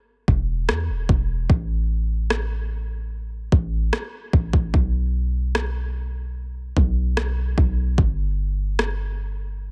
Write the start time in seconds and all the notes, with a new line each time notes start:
0.28 E1, kick
0.69 E2, cross-stick
0.89 E1
1.09 E1, kick
1.50 A1, kick
2.30 cross-stick
3.52 A1, kick
3.93 cross-stick
4.33 A1, kick
4.53 A1, kick
4.74 B1, kick
5.55 cross-stick
6.77 B1, kick
7.17 cross-stick
7.58 B1, kick
7.98 G1, kick
8.79 cross-stick